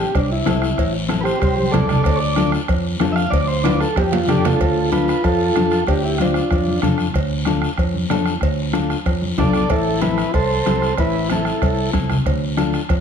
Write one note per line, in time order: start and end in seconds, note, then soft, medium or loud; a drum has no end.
0.00 0.14 G4 medium
0.15 0.40 C2 loud
0.15 0.30 D4 medium
0.15 bombo low medium
0.15 bombo rim loud
0.15 cowbell medium
0.15 long guiro medium
0.32 0.93 E4 medium
0.46 0.72 C2 medium
0.46 0.68 C4 medium
0.46 0.69 E4 medium
0.46 0.69 A4 medium
0.46 bombo rim medium
0.46 cowbell medium
0.46 high conga medium
0.46 low timbale medium
0.46 short guiro medium
0.62 bombo rim medium
0.62 short guiro medium
0.78 1.29 A1 medium
0.78 bombo low medium
0.78 bombo rim medium
0.78 cowbell loud
0.78 long guiro medium
1.09 1.32 C4 medium
1.09 1.32 E4 medium
1.09 1.32 A4 medium
1.09 bombo rim loud
1.09 cowbell medium
1.09 high conga medium
1.09 short guiro medium
1.21 1.39 G4 medium
1.21 1.23 B4 medium
1.25 1.39 C5 medium
1.25 bombo rim medium
1.25 short guiro medium
1.40 1.67 C2 loud
1.40 1.55 G4 medium
1.40 1.55 C5 medium
1.40 bombo low medium
1.40 bombo rim medium
1.40 cowbell medium
1.40 long guiro medium
1.56 1.72 G4 medium
1.56 1.73 C5 medium
1.56 high conga medium
1.71 1.99 C2 medium
1.71 1.96 C4 medium
1.71 1.96 E4 medium
1.71 1.86 A4 medium
1.71 1.97 A4 medium
1.71 1.87 D5 medium
1.71 bombo rim medium
1.71 cowbell medium
1.71 high conga medium
1.71 low conga medium
1.71 short guiro medium
1.87 2.02 A4 medium
1.87 2.02 D5 medium
1.87 bombo rim medium
1.87 low conga medium
1.87 short guiro medium
2.03 2.56 D2 loud
2.03 2.19 A4 medium
2.03 2.19 D5 medium
2.03 bombo low medium
2.03 bombo rim medium
2.03 cowbell loud
2.03 long guiro medium
2.15 2.18 C#5 medium
2.20 2.52 D5 loud
2.36 2.59 D4 medium
2.36 2.60 F4 medium
2.36 2.60 A4 medium
2.36 bombo rim medium
2.36 cowbell medium
2.36 high conga medium
2.36 short guiro medium
2.52 bombo rim medium
2.52 short guiro medium
2.68 2.94 F2 medium
2.68 bombo low medium
2.68 bombo rim medium
2.68 cowbell medium
2.68 long guiro medium
3.00 3.26 F2 medium
3.00 3.23 D4 loud
3.00 3.24 F4 medium
3.00 3.24 A4 loud
3.00 bombo rim medium
3.00 cowbell medium
3.00 high conga loud
3.00 low timbale medium
3.00 short guiro medium
3.12 3.15 E5 medium
3.12 3.32 F5 loud
3.12 bombo rim loud
3.17 short guiro medium
3.30 3.83 D2 medium
3.30 3.47 D5 medium
3.30 bombo low medium
3.30 bombo rim medium
3.30 cowbell loud
3.30 long guiro medium
3.48 3.64 C5 medium
3.64 3.87 D4 medium
3.64 3.87 F4 medium
3.64 3.87 B4 medium
3.64 3.80 D5 medium
3.64 bombo rim medium
3.64 cowbell medium
3.64 high conga medium
3.64 high timbale loud
3.64 short guiro medium
3.80 3.96 A4 medium
3.80 bombo rim medium
3.80 short guiro medium
3.96 4.22 F2 loud
3.96 4.12 G4 medium
3.96 bombo low medium
3.96 bombo rim medium
3.96 cowbell loud
3.96 low timbale medium
3.96 long guiro medium
4.12 4.28 F4 loud
4.12 high conga medium
4.12 low timbale loud
4.28 4.54 F2 medium
4.28 4.51 D4 medium
4.28 4.51 F4 medium
4.28 4.45 G4 medium
4.28 4.52 G4 medium
4.28 4.44 A4 medium
4.28 4.46 D5 loud
4.28 bombo rim medium
4.28 cowbell medium
4.28 high conga medium
4.28 low conga medium
4.28 short guiro medium
4.44 4.60 A3 medium
4.44 4.61 D4 medium
4.44 4.90 F4 medium
4.44 4.90 A4 loud
4.44 bombo rim medium
4.44 low conga medium
4.44 low timbale medium
4.44 short guiro medium
4.60 5.11 D2 medium
4.60 bombo low medium
4.60 bombo rim medium
4.60 cowbell loud
4.60 long guiro medium
4.92 5.15 D4 medium
4.92 5.14 F4 medium
4.92 5.23 F4 medium
4.92 5.15 A4 medium
4.92 5.25 B4 medium
4.92 bombo rim medium
4.92 cowbell medium
4.92 high conga medium
4.92 short guiro medium
5.08 bombo rim medium
5.08 short guiro medium
5.24 5.50 F2 medium
5.24 5.84 F4 medium
5.24 5.84 A4 loud
5.24 bombo low medium
5.24 bombo rim medium
5.24 cowbell medium
5.24 long guiro medium
5.55 5.81 F2 medium
5.55 5.79 D4 medium
5.55 5.79 F4 medium
5.55 5.79 A4 medium
5.55 bombo rim loud
5.55 cowbell medium
5.55 high conga medium
5.55 short guiro medium
5.71 bombo rim medium
5.71 short guiro medium
5.87 6.39 D2 medium
5.87 6.03 D4 medium
5.87 6.03 G4 medium
5.87 bombo low medium
5.87 bombo rim medium
5.87 cowbell loud
5.87 long guiro medium
6.04 6.19 E4 medium
6.04 6.19 G4 medium
6.18 6.43 D4 medium
6.18 6.80 D4 soft
6.18 6.80 F4 medium
6.18 6.43 F4 medium
6.18 6.43 C5 medium
6.18 bombo rim medium
6.18 cowbell medium
6.18 high conga medium
6.18 short guiro medium
6.34 bombo rim medium
6.34 short guiro medium
6.51 6.77 F2 medium
6.51 bombo low medium
6.51 bombo rim medium
6.51 cowbell medium
6.51 long guiro medium
6.67 high conga medium
6.82 7.09 F2 medium
6.82 7.06 D4 medium
6.82 7.06 F4 medium
6.82 7.06 A4 loud
6.82 bombo rim loud
6.82 cowbell medium
6.82 high conga medium
6.82 low conga medium
6.82 short guiro medium
6.98 bombo rim medium
6.98 short guiro medium
7.14 7.66 D2 loud
7.14 bombo low medium
7.14 bombo rim medium
7.14 cowbell loud
7.14 long guiro medium
7.45 7.69 D4 medium
7.45 7.69 F4 medium
7.45 7.70 A4 medium
7.45 bombo rim medium
7.45 cowbell medium
7.45 high conga medium
7.45 short guiro medium
7.62 bombo rim medium
7.62 short guiro medium
7.77 8.04 F2 medium
7.77 bombo low medium
7.77 bombo rim medium
7.77 cowbell medium
7.77 long guiro medium
7.94 high conga medium
8.10 8.36 F2 medium
8.10 8.33 D4 medium
8.10 8.33 F4 medium
8.10 8.33 A4 loud
8.10 bombo rim loud
8.10 cowbell medium
8.10 high conga medium
8.10 low timbale medium
8.10 short guiro medium
8.26 bombo rim medium
8.26 short guiro medium
8.41 8.93 D2 medium
8.41 bombo low medium
8.41 bombo rim medium
8.41 cowbell loud
8.41 long guiro medium
8.73 8.96 D4 medium
8.73 8.96 F4 medium
8.73 8.97 A4 medium
8.73 bombo rim medium
8.73 cowbell medium
8.73 high conga medium
8.73 short guiro medium
8.90 bombo rim medium
8.90 short guiro medium
9.06 9.32 F2 medium
9.06 bombo low medium
9.06 bombo rim medium
9.06 cowbell medium
9.06 long guiro medium
9.22 high conga medium
9.38 9.64 B1 medium
9.38 9.61 D4 medium
9.38 9.61 F4 medium
9.38 9.61 A4 medium
9.38 9.69 A4 medium
9.38 9.72 D5 medium
9.38 bombo low medium
9.38 bombo rim medium
9.38 cowbell medium
9.38 high conga medium
9.38 low conga medium
9.38 low timbale medium
9.38 short guiro medium
9.53 bombo rim medium
9.53 short guiro medium
9.69 10.21 A1 loud
9.69 10.01 E4 medium
9.69 10.00 A4 loud
9.69 bombo low medium
9.69 bombo rim medium
9.69 cowbell loud
9.69 long guiro medium
10.01 10.25 C4 medium
10.01 10.25 E4 medium
10.01 10.32 E4 medium
10.01 10.25 A4 medium
10.01 10.31 B4 medium
10.01 bombo rim medium
10.01 cowbell medium
10.01 high conga medium
10.01 short guiro medium
10.18 bombo rim medium
10.18 short guiro medium
10.34 10.59 C2 loud
10.34 10.94 A4 medium
10.34 10.94 C5 loud
10.34 bombo low medium
10.34 bombo rim medium
10.34 cowbell medium
10.34 long guiro medium
10.66 10.92 C2 medium
10.66 10.89 C4 medium
10.66 10.89 E4 medium
10.66 10.89 G4 medium
10.66 bombo rim medium
10.66 cowbell medium
10.66 high conga medium
10.66 short guiro medium
10.82 bombo rim medium
10.82 short guiro medium
10.97 11.49 A1 medium
10.97 11.29 E4 medium
10.97 11.28 B4 medium
10.97 bombo low medium
10.97 bombo rim medium
10.97 cowbell loud
10.97 long guiro medium
11.30 11.53 C4 medium
11.30 11.90 E4 medium
11.30 11.53 E4 medium
11.30 11.91 A4 medium
11.30 11.53 A4 medium
11.30 bombo rim medium
11.30 cowbell medium
11.30 high conga medium
11.30 short guiro medium
11.45 bombo rim medium
11.45 short guiro medium
11.62 11.87 C2 medium
11.62 bombo low medium
11.62 bombo rim medium
11.62 cowbell medium
11.62 long guiro medium
11.93 12.19 C2 medium
11.93 12.16 C4 medium
11.93 12.16 E4 medium
11.93 12.16 A4 medium
11.93 bombo low medium
11.93 bombo rim medium
11.93 cowbell medium
11.93 high conga medium
11.93 low conga medium
11.93 short guiro medium
12.10 bombo rim medium
12.10 low conga medium
12.10 short guiro medium
12.26 12.77 D2 medium
12.26 bombo low medium
12.26 bombo rim medium
12.26 cowbell loud
12.26 long guiro medium
12.57 12.80 D4 medium
12.57 12.80 F4 medium
12.57 12.80 A4 loud
12.57 bombo rim medium
12.57 cowbell medium
12.57 high conga medium
12.57 short guiro medium
12.73 bombo rim medium
12.73 short guiro medium
12.89 13.00 F2 loud
12.89 bombo low medium
12.89 bombo rim medium
12.89 cowbell medium
12.89 long guiro medium